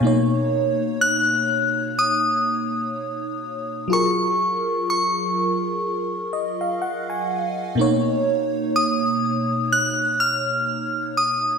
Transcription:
0.01 3.85 B2 medium
0.01 3.86 A#3 medium
0.01 3.87 D#4 medium
0.07 3.88 C#5 medium
1.01 2.00 F#6 loud
1.99 3.97 D#6 loud
3.88 7.72 F#3 medium
3.88 7.73 F4 medium
3.88 7.74 G#4 medium
3.93 7.75 A#4 medium
3.93 4.84 C#6 medium
4.90 7.26 C#6 medium
6.33 6.59 D#5 medium
6.61 6.80 F5 medium
6.82 7.07 F#5 medium
7.10 7.74 G#5 medium
7.75 11.58 B2 medium
7.75 11.58 A#3 medium
7.75 11.58 D#4 medium
7.81 11.58 C#5 medium
8.76 9.75 D#6 loud
9.72 10.22 F#6 loud
10.20 11.13 F6 loud
11.17 11.58 D#6 medium

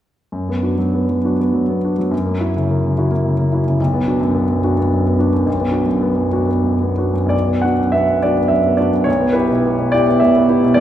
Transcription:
0.32 2.08 F#2 soft
0.49 0.73 B3 soft
0.63 0.76 D4 soft
0.63 0.77 F#4 soft
0.78 1.03 F#3 soft
0.94 1.18 B3 soft
1.09 1.33 F#3 soft
1.24 1.38 D4 soft
1.24 1.38 F#4 soft
1.40 1.63 B3 soft
1.53 1.77 F#3 soft
1.69 1.92 B3 soft
1.84 1.97 D4 soft
1.84 1.97 F#4 soft
1.99 2.13 F#3 soft
2.11 3.75 F#2 soft
2.25 2.49 A#3 soft
2.40 2.54 E4 soft
2.40 2.54 F#4 soft
2.56 2.78 C#3 soft
2.70 2.92 A#3 soft
2.85 3.06 C#3 soft
2.98 3.10 E4 soft
2.98 3.10 F#4 soft
3.11 3.33 A#3 soft
3.25 3.47 C#3 soft
3.39 3.60 A#3 soft
3.53 3.64 E4 soft
3.53 3.65 F#4 soft
3.67 3.80 C#3 soft
3.80 5.44 B1 soft
3.94 4.16 B3 soft
4.07 4.20 D4 soft
4.07 4.20 F#4 soft
4.20 4.44 F#2 soft
4.35 4.59 B3 soft
4.50 4.74 F#2 soft
4.64 4.78 D4 soft
4.64 4.78 F#4 soft
4.78 5.01 B3 soft
4.93 5.15 F#2 soft
5.06 5.28 B3 soft
5.19 5.32 D4 soft
5.19 5.32 F#4 soft
5.33 5.55 F#2 soft
5.46 7.25 B1 soft
5.59 5.82 B3 soft
5.71 5.85 D4 soft
5.71 5.86 F#4 soft
5.86 6.11 F#2 soft
6.01 6.26 B3 soft
6.16 6.42 F#2 soft
6.33 6.47 D4 soft
6.33 6.47 F#4 soft
6.48 6.74 B3 soft
6.64 6.92 F#2 soft
6.81 7.10 B3 soft
6.98 7.14 D4 soft
6.98 7.14 F#4 soft
7.14 7.31 F#2 soft
7.26 9.00 B1 soft
7.26 7.62 D5 medium
7.48 7.73 B3 soft
7.62 7.77 D4 soft
7.62 7.78 F#4 soft
7.62 7.93 F#5 medium
7.79 8.03 F#2 soft
7.92 8.18 B3 soft
7.92 8.22 E5 medium
8.10 8.33 F#2 soft
8.22 8.37 D4 soft
8.22 8.37 F#4 soft
8.22 8.51 D5 medium
8.38 8.60 B3 soft
8.48 8.73 F#2 soft
8.48 8.78 E5 medium
8.66 8.88 B3 soft
8.77 8.92 D4 soft
8.77 8.92 F#4 soft
8.77 9.06 D5 medium
8.92 9.07 F#2 soft
9.04 10.74 B1 soft
9.04 9.35 C#5 medium
9.20 9.44 B3 soft
9.33 9.49 E4 soft
9.33 9.49 G4 soft
9.33 9.92 B4 medium
9.50 9.74 B2 soft
9.66 9.88 B3 soft
9.79 10.02 B2 soft
9.92 10.07 E4 soft
9.92 10.07 G4 soft
9.92 10.21 D5 medium
10.08 10.30 B3 soft
10.20 10.44 B2 soft
10.20 10.77 E5 medium
10.36 10.59 B3 soft
10.49 10.62 E4 soft
10.49 10.62 G4 soft
10.63 10.78 B2 soft
10.74 10.80 B1 soft
10.74 10.80 D5 medium

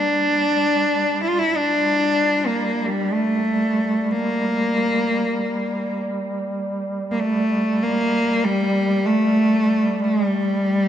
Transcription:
0.00 1.61 G3 soft
0.00 1.21 D4 medium
1.23 1.30 E4 medium
1.29 1.40 F4 medium
1.39 1.58 E4 medium
1.57 2.48 D4 medium
1.78 10.88 G3 soft
2.46 2.87 A#3 medium
2.86 3.15 G3 medium
3.13 4.13 A3 medium
4.11 5.98 A#3 medium
7.12 7.21 A#3 medium
7.20 7.84 A3 medium
7.83 8.46 A#3 medium
8.44 9.07 G3 medium
9.05 10.05 A3 medium
10.04 10.26 G#3 medium
10.26 10.88 G3 medium

